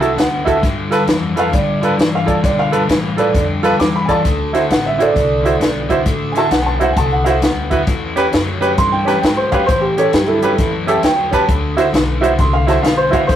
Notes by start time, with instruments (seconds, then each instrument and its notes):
Already playing: upright bass C2, upright piano D6
0.00 overdriven electric guitar D3 A3, grand piano E4 F#4 A4 A5, closed hi-hat
0.16 upright bass D2, overdriven electric guitar D3 B3, grand piano F#5, snare, closed hi-hat
0.45 overdriven electric guitar D3 B3, grand piano E4 F#4 A4 E5, kick, closed hi-hat
0.61 overdriven electric guitar G2 D3, upright bass G2, kick, snare, closed hi-hat
0.90 overdriven electric guitar G2 D3, grand piano F4 A4 B4, snare, closed hi-hat
1.06 upright bass F2, overdriven electric guitar G2 E3, snare, closed hi-hat
1.36 overdriven electric guitar G2 E3, grand piano F4 A4 B4, upright piano F5, closed hi-hat
1.51 overdriven electric guitar G2 D3, upright bass A2, upright piano D5, kick, snare, closed hi-hat
1.81 overdriven electric guitar G2 D3, grand piano F4 A4 B4, closed hi-hat
1.97 overdriven electric guitar G2 E3, upright bass G2, snare, closed hi-hat
2.15 upright piano F5
2.26 overdriven electric guitar G2 E3, grand piano F4 A4 D5, kick, closed hi-hat
2.43 overdriven electric guitar G2 D3, upright bass B2, upright piano D5, kick, snare, closed hi-hat
2.59 upright piano F5
2.71 overdriven electric guitar G2 D3, grand piano F4 A4 B4, closed hi-hat
2.89 overdriven electric guitar G2 E3, upright bass A2, snare, closed hi-hat
3.17 overdriven electric guitar G2 E3, grand piano F4 A4 B4, upright piano A4 D5, closed hi-hat
3.34 upright bass F2, overdriven electric guitar G2 D3, kick, snare, closed hi-hat
3.63 overdriven electric guitar G2 D3, grand piano F4 A4 B4, closed hi-hat
3.79 upright bass E2, overdriven electric guitar G2 E3, upright piano D6, snare, closed hi-hat
3.96 upright piano B5
4.05 overdriven electric guitar G2 E3, grand piano F4 A4 D5, upright piano G#5, kick, closed hi-hat
4.10 upright piano A5
4.24 upright bass D2, overdriven electric guitar D3 A3, kick, snare, closed hi-hat
4.53 overdriven electric guitar D3 A3, grand piano E4 F#4 C5, snare, closed hi-hat
4.69 upright bass A1, overdriven electric guitar D3 B3, upright piano F#5, snare, closed hi-hat
4.86 upright piano E5
4.98 overdriven electric guitar D3 B3, grand piano E4 F#4 C5, upright piano A4, closed hi-hat
5.02 upright piano D5
5.13 upright bass C2, overdriven electric guitar D3 A3, kick, closed hi-hat
5.18 snare
5.43 overdriven electric guitar D3 A3, grand piano E4 F#4 C5, closed hi-hat
5.60 upright bass B1, overdriven electric guitar D3 B3, snare, closed hi-hat
5.89 overdriven electric guitar D3 B3, grand piano E4 F#4 C5, kick, closed hi-hat
6.06 upright bass A1, overdriven electric guitar D3 A3, kick, snare, closed hi-hat
6.32 overdriven electric guitar D3 A3, upright piano G#5, closed hi-hat
6.37 grand piano E4 F#4 A4, upright piano A5, snare
6.51 upright bass B1, overdriven electric guitar D3 B3, upright piano F#5, snare, closed hi-hat
6.62 upright piano G#5
6.66 upright piano A5
6.80 overdriven electric guitar D3 B3, grand piano E4 F#4 C5, upright piano F#5, closed hi-hat
6.92 overdriven electric guitar D3, upright piano G#5
6.97 upright bass C2, overdriven electric guitar A3, upright piano A5, kick, closed hi-hat
7.12 upright piano F#5
7.24 overdriven electric guitar D3 A3, grand piano E4 F#4 C5, upright piano F5, snare, closed hi-hat
7.29 upright piano F#5
7.42 upright bass D2, overdriven electric guitar D3 B3, snare, closed hi-hat
7.70 overdriven electric guitar D3 B3, grand piano E4 F#4 B4, kick, closed hi-hat
7.87 upright bass E2, overdriven electric guitar A2 E3, kick, snare, closed hi-hat
8.16 overdriven electric guitar A2 E3, grand piano C#4 G4 B4, closed hi-hat
8.32 upright bass F#2, overdriven electric guitar A2 F#3, snare, closed hi-hat
8.61 overdriven electric guitar A2 F#3, grand piano C#4 G4 B4, closed hi-hat
8.78 upright bass G2, overdriven electric guitar A2 E3, upright piano C6, kick, snare, closed hi-hat
8.92 upright piano G5
9.05 overdriven electric guitar A2 E3, grand piano C#4 G4 B4, upright piano A5, closed hi-hat
9.09 snare
9.22 upright bass G#2, overdriven electric guitar A2 F#3, upright piano G5, snare, closed hi-hat
9.37 upright piano C5
9.52 overdriven electric guitar A2 F#3, grand piano C#4 G4 B4, upright piano F5, kick, closed hi-hat
9.66 overdriven electric guitar A2 E3, upright bass A2, upright piano C5, kick, snare, closed hi-hat
9.81 upright piano G4
9.97 overdriven electric guitar A2 E3, grand piano C#4 G4 C#5, upright piano A4, closed hi-hat
10.13 upright bass G2, overdriven electric guitar A2 F#3, upright piano G4, snare, closed hi-hat
10.27 upright piano E4 A4
10.42 overdriven electric guitar A2 F#3, grand piano C#4 G4 B4, closed hi-hat
10.58 upright bass F#2, overdriven electric guitar A2 E3, kick, snare, closed hi-hat
10.87 overdriven electric guitar A2 E3, grand piano C#4 G4 A4 E5, closed hi-hat
11.03 upright bass E2, overdriven electric guitar A2 F#3, grand piano G5, snare, closed hi-hat
11.31 overdriven electric guitar A2 F#3, grand piano C#4 G4 B4 A5, kick, closed hi-hat
11.48 upright bass D2, overdriven electric guitar D3 A3, kick, closed hi-hat
11.77 overdriven electric guitar D3 A3, grand piano E4 F#4 C5, snare, closed hi-hat
11.93 upright bass B1, overdriven electric guitar D3 B3, snare, closed hi-hat
12.21 overdriven electric guitar D3 B3, grand piano E4 F#4 C5, closed hi-hat
12.38 upright bass C2, overdriven electric guitar D3 A3, upright piano C6, kick, snare, closed hi-hat
12.53 upright piano F5
12.67 overdriven electric guitar D3 A3, grand piano E4 F#4 C5, upright piano A5, snare, closed hi-hat
12.82 upright bass B1, overdriven electric guitar D3 B3, upright piano F5, snare, closed hi-hat
12.97 upright piano C5
13.10 overdriven electric guitar D3 B3, grand piano E4 F#4 C5, upright piano F5, muted upright bass stroke, kick, closed hi-hat
13.27 upright bass A1, overdriven electric guitar D3 A3, upright piano C5, kick, snare, closed hi-hat